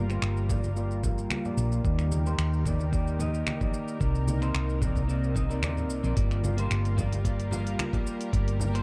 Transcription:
Already playing: G1 G3 F4 A#4
0.09 A#3 F4 G4 C5, finger snap, shaker
0.22 G1, finger snap, shaker
0.37 shaker
0.49 A#3 F4 G4 D5, kick, low conga, shaker
0.64 high conga, shaker
0.76 A#3 F4 G4 D5, shaker
0.91 shaker
1.03 A#3 F4 G4 F5, kick, low conga, shaker
1.18 shaker
1.30 finger snap, high conga, shaker
1.44 A#3 F4 G4 D5, low conga, shaker
1.57 A#1, shaker
1.72 shaker
1.84 D#2 D#3 A#3 D#4 G4 A#4 D5, kick, shaker
1.99 finger snap, shaker
2.12 high conga, shaker
2.25 A#3 D#4 G4 C5, shaker
2.38 D#2, finger snap, shaker
2.53 shaker
2.65 A#3 D#4 G4 D5, kick, low conga, shaker
2.79 high conga, shaker
2.92 A#3 D#4 G4 D5, kick, shaker
3.07 shaker
3.19 A#3 D#4 G4 D#5, low conga, shaker
3.34 shaker
3.47 finger snap, high conga, shaker
3.60 A#3 D#4 G4 D5, kick, low conga, shaker
3.74 shaker
3.88 shaker
4.00 C2 C3 A#3 C4 D#4 A#4 D5, kick, shaker
4.15 shaker
4.28 high conga, shaker
4.41 C4 D#4 A#4 C5, finger snap, shaker
4.54 C2, finger snap, shaker
4.70 shaker
4.81 C4 D#4 A#4 D5, kick, low conga, shaker
4.96 kick, high conga, shaker
5.08 C4 D#4 A#4 D5, shaker
5.24 shaker
5.35 C4 D#4 A#4 D#5, kick, low conga, shaker
5.49 C4 D#4 A#4 D5, shaker
5.62 D#2 C4 D#4 A#4 D5, finger snap, high conga, shaker
5.77 low conga, shaker
5.89 C2, shaker
6.03 A#1 C4 D#4 A#4 D5, shaker
6.16 G1 G3 A#3 F4 G4 A#4 D5, kick, closed hi-hat, shaker
6.31 finger snap, shaker
6.44 high conga, shaker
6.57 A#3 F4 G4 C5, closed hi-hat, shaker
6.71 G1, finger snap, closed hi-hat, shaker
6.85 closed hi-hat, shaker
6.97 A#3 F4 G4 D5, kick, low conga, shaker
7.12 closed hi-hat, high conga, shaker
7.25 A#3 F4 G4 D5, kick, closed hi-hat, shaker
7.40 closed hi-hat, shaker
7.51 A#3 F4 G4 F5, low conga, shaker
7.67 closed hi-hat, shaker
7.79 finger snap, closed hi-hat, high conga, shaker
7.93 A#3 F4 G4 D5, kick, closed hi-hat, low conga, shaker
8.07 shaker
8.21 closed hi-hat, shaker
8.32 G1 A#3 F4 G4 D5, kick, closed hi-hat, shaker
8.48 closed hi-hat, shaker
8.60 high conga, shaker
8.73 A#3 F4 G4 C5, finger snap, closed hi-hat, shaker

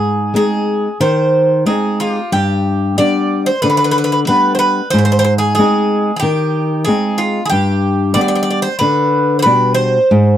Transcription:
Already playing: G#2 G#4
0.34 G#3 C4 D#4 G#4
1.00 D#3 C5
1.66 G#3 C4 D#4 G#4
2.00 F4 G4
2.32 G2 G4
2.98 G3 B3 D4 D5
3.46 C5
3.62 D3 B4
3.70 B4
3.77 B4
3.84 B4
3.91 B4
3.98 B4
4.04 B4
4.12 B4
4.27 G3 B3 D4 B4
4.55 C5
4.59 B4
4.90 G#2 C5
4.98 C5
5.05 C5
5.12 C5
5.19 C5
5.24 C5
5.38 G#4
5.55 G#3 G#4
5.59 C4 D#4
6.16 G4 G#4
6.22 D#3
6.85 G#3 C4 D#4 G#4
7.18 F4
7.45 G#4
7.49 G2 G4
8.14 G3 B3 D4 D5
8.21 D5
8.28 D5
8.35 D5
8.43 D5
8.50 D5
8.62 C5
8.79 D3 B4
9.39 B4 C5
9.46 B2 G3 D4
9.74 C5
10.11 G#2

